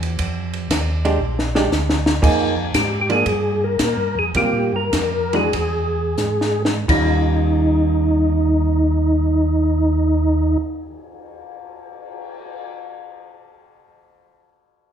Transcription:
Already playing: E2
0.03 ride
0.19 F2, kick, ride
0.53 ride
0.70 D#2, kick, snare, hi-hat pedal, ride
1.05 G#3 D4 G4, ride
1.19 A#1
1.39 snare
1.55 G#3 D4 G4, snare
1.70 D2, snare, hi-hat pedal
1.89 snare
2.06 snare
2.22 F2 F3 A#3 D#4 G#4, kick, crash
2.74 G#2 G4, kick, snare, hi-hat pedal, ride
3.01 G4
3.10 F3 A#3 D4 G#4, ride
3.26 G2, kick, ride
3.64 A#4
3.79 A#2, kick, snare, hi-hat pedal, ride
3.97 G2
4.15 F2 G#4
4.35 C3 G3 A#3 F4 G4, kick, ride
4.53 A#2
4.73 G2 A#4
4.92 F2, kick, snare, hi-hat pedal, ride
5.33 E3 G#3 D4 F#4 G#4, ride
5.53 E2, kick, ride
6.18 G#2, snare, hi-hat pedal
6.41 snare
6.65 snare
6.88 D#2 D#3 G3 C#4 D#4 F4, kick, crash
7.38 cymbal swell

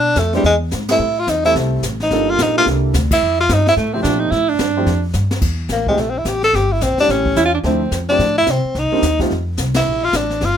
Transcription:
Already playing: B2 D4
0.16 F2 A3, kick, snare, hi-hat pedal
0.33 G3 G#3 C4 D4 E4 B4, snare
0.44 E2 G#3, brush sweep, kick, snare
0.71 G#2, snare, hi-hat pedal
0.88 G3 A3 C4 E4 A4, snare, ride
0.99 A2, brush sweep
1.19 F4
1.27 E2 D#4, kick, snare, hi-hat pedal
1.44 G3 A3 C4 E4 A4, snare
1.55 C2, brush sweep, kick, snare
1.83 A1, kick, snare, hi-hat pedal
2.00 D#4, snare
2.10 G1 G3 A#3 D4 F4 A4, brush sweep, kick, snare
2.30 F4
2.38 A#1, kick, snare, hi-hat pedal
2.42 D#4
2.56 G3 A#3 D4 E4 F4 A4
2.66 C2, brush sweep, kick, snare
2.94 D2, kick, snare, hi-hat pedal
3.11 E4, kick, crash
3.22 F2, brush sweep
3.40 F4
3.49 G2, kick, snare, hi-hat pedal
3.53 D#4
3.67 E4, snare
3.77 A2 A3, brush sweep, kick, snare
3.93 F3 A3 C4 E4 G4
4.02 A#2 D4, kick, snare, hi-hat pedal
4.19 D#4
4.31 A2 E4, brush sweep, kick, snare
4.49 D4
4.59 G2, kick, snare, hi-hat pedal
4.77 F3 A3 C4 E4 G4
4.86 F2, brush sweep, kick, snare
5.13 G2, snare, hi-hat pedal
5.31 snare
5.42 E2, brush sweep, kick, snare, crash
5.69 A1 A#3, kick, snare, hi-hat pedal
5.87 G3 G#3 A3 C4 E4 G4, kick
5.97 A#1 A3, brush sweep, kick, snare
6.10 C4
6.18 E4
6.25 A1 G4, kick, snare, hi-hat pedal
6.43 A4, snare
6.53 G1 G4, brush sweep, kick, snare
6.72 E4
6.81 A#1 C4, kick, snare, hi-hat pedal
6.98 G3 A3 C#4 D4 E4 G4, muted upright bass stroke, snare
7.09 A1 C#4, brush sweep, kick, snare
7.26 kick
7.36 E2 E4, kick, snare, hi-hat pedal
7.46 F4
7.54 D4
7.63 D2 F3 A3 C4 D4 E4, brush sweep, kick, snare
7.91 F2, kick, snare, hi-hat pedal
8.09 F3 A3 C4 D4 G4
8.19 A2, brush sweep, kick, snare
8.38 E4
8.46 C3, kick, snare, hi-hat pedal
8.51 C4
8.64 muted upright bass stroke
8.75 C2 D#4, brush sweep, kick, snare
8.92 G3 A#3 C4 D4 D#4
9.02 D#2, kick, snare, hi-hat pedal
9.20 G3 A3 C4 D#4 F4, kick, snare
9.30 F2, brush sweep, kick, snare
9.57 C2, kick, snare, hi-hat pedal
9.74 E4, snare, ride
9.85 A#1, brush sweep
10.04 F4
10.13 A1 D4, kick, snare, hi-hat pedal
10.30 snare
10.41 G1 F4, brush sweep, kick, snare

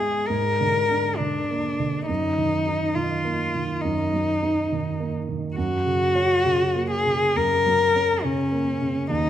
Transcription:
Already playing: G#2 B3 E4 G#4
0.00 G#3
0.27 G#2 A#4
0.61 D3
0.91 D4
1.17 D3 D4
1.51 A#3
1.80 D3
2.07 F#2 D#4
2.38 D#3
2.67 D#4
2.95 D#3 F4
3.25 A#3
3.55 D#3
3.81 F#2 D#4
4.14 F#3
4.43 D#4
4.72 D#3
5.00 A#3
5.29 D#3
5.56 F#2 F#4
5.86 C#3
6.15 C#4
6.45 C#3
6.76 A#3
6.91 G#4
7.05 C#3
7.36 F#2 A#4
7.66 F#3
7.96 C#4
8.24 C#3 C#4
8.52 A#3
8.81 C#3
9.09 D#2 D#4

